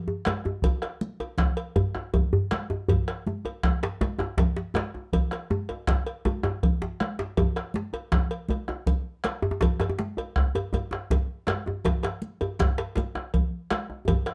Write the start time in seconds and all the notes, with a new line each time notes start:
0.08 djembe tone
0.25 bombo rim, cowbell, djembe slap, high conga, djembe tone
0.44 bombo rim, djembe tone
0.62 bombo low, cowbell, low conga, djembe bass
0.82 bombo rim, cowbell, djembe slap
1.01 high conga
1.20 cowbell, djembe slap, djembe tone
1.38 bombo rim, bombo low, djembe slap, low conga
1.57 cowbell
1.76 bombo rim, cowbell, djembe slap, high conga, djembe bass
1.95 bombo rim, djembe slap, djembe tone, high conga
2.14 bombo low, cowbell, djembe tone, low conga
2.33 djembe bass
2.51 bombo rim, cowbell, djembe slap, high conga
2.70 bombo rim, djembe tone
2.88 bombo low, cowbell, djembe bass, low conga
3.08 bombo rim, cowbell, djembe slap
3.27 high conga, djembe tone
3.45 cowbell, djembe slap, djembe tone
3.63 bombo rim, bombo low, djembe slap, low conga
3.83 cowbell, djembe slap
4.01 bombo rim, cowbell, djembe slap, high conga, djembe bass
4.19 bombo rim, djembe slap, djembe tone, high conga
4.37 bombo low, cowbell, djembe slap, low conga
4.57 djembe slap
4.74 bombo rim, cowbell, djembe slap, djembe tone, high conga
4.94 bombo rim, djembe tone
5.13 bombo low, cowbell, djembe slap, low conga, djembe bass
5.31 bombo rim, cowbell, djembe slap, high conga
5.50 bombo rim, high conga, djembe tone
5.69 bombo rim, cowbell, high conga, djembe tone
5.87 bombo rim, bombo low, djembe slap, low conga
6.07 cowbell
6.25 cowbell, djembe slap, high conga, djembe bass
6.43 bombo rim, djembe slap, djembe tone
6.63 bombo rim, bombo low, cowbell, high conga, low conga
6.82 djembe slap, djembe bass
7.00 bombo rim, cowbell, djembe slap, high conga
7.19 bombo rim, djembe slap
7.37 bombo low, cowbell, djembe tone, low conga, djembe bass
7.56 bombo rim, cowbell, djembe slap
7.74 djembe slap, high conga
7.93 cowbell, djembe slap, djembe tone
8.12 bombo rim, bombo low, djembe slap, low conga
8.31 cowbell
8.48 bombo rim, cowbell, djembe slap, high conga, djembe bass
8.68 bombo rim, djembe slap, high conga, djembe tone
8.86 bombo low, cowbell, low conga
9.24 bombo rim, cowbell, djembe slap, high conga
9.42 bombo rim, djembe tone
9.51 djembe tone
9.61 bombo low, cowbell, djembe slap, djembe bass, low conga
9.80 bombo rim, cowbell, djembe slap, djembe tone
9.89 djembe tone
9.99 djembe slap, high conga
10.17 cowbell, djembe slap, djembe tone
10.36 bombo rim, bombo low
10.55 cowbell, djembe tone
10.73 bombo rim, cowbell, djembe slap, djembe tone, high conga, djembe bass
10.91 djembe slap, djembe tone
10.93 bombo rim, djembe slap, high conga
11.10 bombo low, cowbell, djembe slap, low conga
11.47 bombo rim, cowbell, djembe slap, high conga, djembe tone
11.66 bombo rim, djembe tone
11.85 bombo low, cowbell, djembe slap, low conga, djembe bass
12.03 cowbell, djembe slap
12.04 bombo rim, djembe slap
12.22 high conga
12.41 cowbell, djembe slap, djembe tone
12.59 bombo rim, bombo low, djembe slap, djembe tone, low conga
12.78 cowbell, djembe slap
12.96 bombo rim, cowbell, djembe slap, high conga, djembe bass
13.15 bombo rim, djembe slap, djembe tone, high conga
13.34 bombo low, cowbell, low conga
13.70 bombo rim, cowbell, djembe slap, high conga
13.90 bombo rim, djembe tone
14.08 bombo low, cowbell, djembe slap, djembe tone, djembe bass, low conga
14.26 bombo rim, cowbell, djembe slap